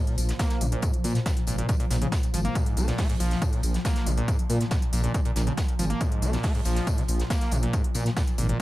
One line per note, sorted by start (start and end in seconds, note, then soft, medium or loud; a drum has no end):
0.00 8.62 A#2 medium
0.00 8.62 F3 medium
0.07 0.16 A#2 medium
0.07 closed hi-hat medium
0.18 0.33 A#1 loud
0.18 open hi-hat loud
0.18 tambourine medium
0.29 snare soft
0.29 closed hi-hat medium
0.39 0.63 A#3 medium
0.39 kick loud
0.39 snare loud
0.39 closed hi-hat medium
0.39 tambourine medium
0.49 snare soft
0.49 closed hi-hat medium
0.61 0.76 A#1 medium
0.61 0.67 A#2 medium
0.61 open hi-hat loud
0.61 tambourine medium
0.72 0.84 A#2 medium
0.72 closed hi-hat medium
0.82 0.92 G#2 medium
0.82 kick loud
0.82 closed hi-hat medium
0.82 tambourine medium
0.94 closed hi-hat medium
1.04 1.13 A#2 loud
1.04 1.19 A#2 loud
1.04 open hi-hat loud
1.04 tambourine medium
1.15 snare soft
1.15 closed hi-hat medium
1.26 1.32 A#2 medium
1.26 kick loud
1.26 snare loud
1.26 closed hi-hat medium
1.26 tambourine loud
1.37 closed hi-hat medium
1.47 1.62 G#1 medium
1.47 1.56 A#2 medium
1.47 open hi-hat loud
1.47 tambourine medium
1.58 1.67 A#2 medium
1.58 closed hi-hat medium
1.69 1.75 A#2 loud
1.69 kick loud
1.69 closed hi-hat medium
1.69 tambourine loud
1.80 1.86 A#2 medium
1.80 closed hi-hat soft
1.80 closed hi-hat medium
1.90 2.05 A#1 loud
1.90 1.97 A#2 loud
1.90 snare soft
1.90 open hi-hat loud
1.90 tambourine medium
2.01 2.07 C#3 medium
2.01 closed hi-hat medium
2.12 kick loud
2.12 snare loud
2.12 closed hi-hat medium
2.12 tambourine medium
2.23 closed hi-hat medium
2.34 2.49 G#1 medium
2.34 2.40 F3 medium
2.34 open hi-hat loud
2.34 tambourine medium
2.45 2.57 A#3 loud
2.45 closed hi-hat medium
2.55 2.78 G#2 medium
2.55 kick loud
2.55 closed hi-hat medium
2.55 tambourine medium
2.66 closed hi-hat medium
2.77 2.92 B1 loud
2.77 2.86 A#3 loud
2.77 open hi-hat loud
2.77 tambourine medium
2.88 3.00 A#2 medium
2.88 snare medium
2.88 closed hi-hat medium
2.98 3.08 A#3 medium
2.98 kick loud
2.98 snare loud
2.98 closed hi-hat medium
2.98 open hi-hat medium
3.10 3.15 G#2 loud
3.10 closed hi-hat medium
3.20 3.35 A#1 medium
3.20 3.43 F3 medium
3.20 open hi-hat loud
3.20 tambourine medium
3.31 snare soft
3.31 closed hi-hat medium
3.42 3.54 G#2 medium
3.42 kick loud
3.42 closed hi-hat medium
3.42 tambourine medium
3.53 3.61 A#2 medium
3.53 closed hi-hat medium
3.63 3.78 A#1 loud
3.63 open hi-hat loud
3.63 tambourine medium
3.74 snare soft
3.74 closed hi-hat medium
3.85 4.08 A#3 medium
3.85 kick loud
3.85 snare loud
3.85 closed hi-hat medium
3.85 tambourine medium
3.96 snare medium
3.96 closed hi-hat medium
4.06 4.21 A#1 medium
4.06 4.12 A#2 medium
4.06 open hi-hat loud
4.06 tambourine medium
4.17 4.30 A#2 medium
4.17 closed hi-hat medium
4.28 4.37 G#2 medium
4.28 kick loud
4.28 closed hi-hat medium
4.28 tambourine medium
4.39 closed hi-hat medium
4.50 4.64 A#2 loud
4.50 4.59 A#2 loud
4.50 open hi-hat loud
4.50 tambourine medium
4.61 snare soft
4.61 closed hi-hat medium
4.71 4.77 A#2 medium
4.71 kick loud
4.71 snare loud
4.71 closed hi-hat medium
4.71 tambourine medium
4.82 closed hi-hat medium
4.93 5.08 A#1 medium
4.93 5.02 A#2 medium
4.93 open hi-hat loud
4.93 tambourine medium
5.04 5.13 A#2 medium
5.04 closed hi-hat soft
5.14 5.20 A#2 loud
5.14 kick loud
5.14 closed hi-hat medium
5.14 tambourine medium
5.25 5.31 A#2 medium
5.25 closed hi-hat soft
5.36 5.51 A#1 loud
5.36 5.42 A#2 loud
5.36 snare soft
5.36 open hi-hat loud
5.36 tambourine medium
5.47 5.53 C#3 medium
5.47 closed hi-hat soft
5.57 kick loud
5.57 snare loud
5.57 closed hi-hat medium
5.57 tambourine medium
5.68 closed hi-hat medium
5.79 5.94 G#1 medium
5.79 5.85 F3 medium
5.79 open hi-hat loud
5.79 tambourine medium
5.90 6.02 A#3 loud
5.90 closed hi-hat soft
6.01 6.24 G#2 medium
6.01 kick loud
6.01 closed hi-hat medium
6.01 tambourine medium
6.12 closed hi-hat soft
6.22 6.37 B1 loud
6.22 6.31 A#3 loud
6.22 open hi-hat loud
6.22 tambourine medium
6.33 6.45 A#2 medium
6.33 snare medium
6.33 closed hi-hat soft
6.43 6.53 A#3 medium
6.43 kick loud
6.43 snare loud
6.43 closed hi-hat medium
6.43 open hi-hat medium
6.55 6.61 G#2 loud
6.55 closed hi-hat medium
6.65 6.80 A#1 medium
6.65 6.89 F3 medium
6.65 open hi-hat loud
6.65 tambourine medium
6.76 snare soft
6.76 closed hi-hat soft
6.87 6.99 G#2 medium
6.87 kick loud
6.87 closed hi-hat medium
6.87 tambourine medium
6.98 7.04 C#3 loud
6.98 closed hi-hat soft
7.08 7.23 A#1 loud
7.08 open hi-hat loud
7.08 tambourine medium
7.20 snare soft
7.20 closed hi-hat soft
7.30 7.53 A#3 medium
7.30 kick loud
7.30 snare loud
7.30 closed hi-hat medium
7.30 tambourine medium
7.41 snare soft
7.41 closed hi-hat medium
7.51 7.67 A#1 medium
7.51 7.58 A#2 medium
7.51 open hi-hat loud
7.51 tambourine medium
7.63 7.75 A#2 medium
7.63 closed hi-hat medium
7.73 7.82 G#2 medium
7.73 kick loud
7.73 closed hi-hat medium
7.73 tambourine medium
7.84 closed hi-hat medium
7.94 8.10 A#2 loud
7.94 8.04 A#2 loud
7.94 open hi-hat loud
7.94 tambourine medium
8.06 snare soft
8.06 closed hi-hat soft
8.17 8.23 A#2 medium
8.17 kick loud
8.17 snare loud
8.17 closed hi-hat medium
8.17 tambourine medium
8.27 closed hi-hat soft
8.38 8.53 G#1 medium
8.38 8.47 A#2 medium
8.38 open hi-hat loud
8.38 tambourine medium
8.49 8.58 A#2 medium
8.49 closed hi-hat medium